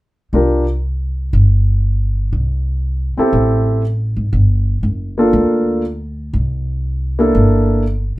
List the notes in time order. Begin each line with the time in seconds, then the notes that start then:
0.33 C2 D4 F4 G4 A#4
1.33 G1
2.33 C2
3.17 C4 E4 G4 A4, muted upright bass stroke
3.33 A1
4.16 G#1
4.33 G1
4.83 F#1
5.18 A#3 D4 F4 A4
5.33 D2
6.33 C2
7.19 A#3 D4 E4 A4
7.35 G1